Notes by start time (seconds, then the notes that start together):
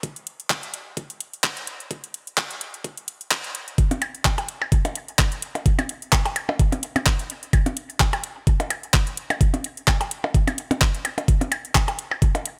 0.03 kick, closed hi-hat
0.16 closed hi-hat
0.27 closed hi-hat
0.40 closed hi-hat
0.50 kick, clap, closed hi-hat
0.63 closed hi-hat
0.74 closed hi-hat
0.97 kick, closed hi-hat
1.10 closed hi-hat
1.20 closed hi-hat
1.33 closed hi-hat
1.44 kick, clap, closed hi-hat
1.57 closed hi-hat
1.67 closed hi-hat
1.80 closed hi-hat
1.91 kick, closed hi-hat
2.04 closed hi-hat
2.14 closed hi-hat
2.27 closed hi-hat
2.38 kick, clap, closed hi-hat
2.51 closed hi-hat
2.61 closed hi-hat
2.74 closed hi-hat
2.84 kick, closed hi-hat
2.97 closed hi-hat
3.08 closed hi-hat
3.21 closed hi-hat
3.31 kick, clap, closed hi-hat
3.44 closed hi-hat
3.55 closed hi-hat
3.68 closed hi-hat
3.78 kick, closed hi-hat
3.91 closed hi-hat, percussion blips
4.02 closed hi-hat, percussion blips
4.15 closed hi-hat
4.25 kick, clap, closed hi-hat, percussion blips
4.38 closed hi-hat, percussion blips
4.49 closed hi-hat
4.62 percussion blips
4.72 kick, closed hi-hat
4.85 closed hi-hat, percussion blips
4.95 closed hi-hat
5.08 closed hi-hat
5.19 kick, clap, closed hi-hat, percussion blips
5.32 closed hi-hat
5.42 closed hi-hat
5.55 closed hi-hat, percussion blips
5.66 kick, closed hi-hat
5.79 closed hi-hat, percussion blips
5.89 closed hi-hat
6.02 closed hi-hat
6.13 kick, clap, closed hi-hat, percussion blips
6.25 closed hi-hat, percussion blips
6.36 closed hi-hat, percussion blips
6.49 percussion blips
6.59 kick, closed hi-hat
6.72 closed hi-hat, percussion blips
6.83 closed hi-hat
6.96 closed hi-hat, percussion blips
7.06 kick, clap, closed hi-hat
7.19 closed hi-hat
7.30 closed hi-hat
7.43 closed hi-hat
7.53 kick, closed hi-hat, percussion blips
7.66 closed hi-hat, percussion blips
7.77 closed hi-hat
7.90 closed hi-hat
8.00 kick, clap, closed hi-hat, percussion blips
8.13 closed hi-hat, percussion blips
8.24 closed hi-hat
8.47 kick, closed hi-hat
8.60 closed hi-hat, percussion blips
8.70 closed hi-hat, percussion blips
8.83 closed hi-hat
8.94 kick, clap, closed hi-hat
9.07 closed hi-hat
9.17 closed hi-hat
9.30 closed hi-hat, percussion blips
9.41 kick, closed hi-hat
9.54 closed hi-hat, percussion blips
9.64 closed hi-hat
9.77 closed hi-hat
9.88 kick, clap, closed hi-hat, percussion blips
10.01 closed hi-hat, percussion blips
10.11 closed hi-hat
10.24 percussion blips
10.34 kick, closed hi-hat
10.47 closed hi-hat, percussion blips
10.58 closed hi-hat
10.71 closed hi-hat, percussion blips
10.81 kick, clap, closed hi-hat
10.95 closed hi-hat
11.05 closed hi-hat, percussion blips
11.18 closed hi-hat, percussion blips
11.28 kick, closed hi-hat
11.41 closed hi-hat, percussion blips
11.52 closed hi-hat, percussion blips
11.65 closed hi-hat
11.75 kick, clap, closed hi-hat, percussion blips
11.88 closed hi-hat, percussion blips
11.99 closed hi-hat
12.11 percussion blips
12.22 kick, closed hi-hat
12.35 closed hi-hat, percussion blips
12.46 closed hi-hat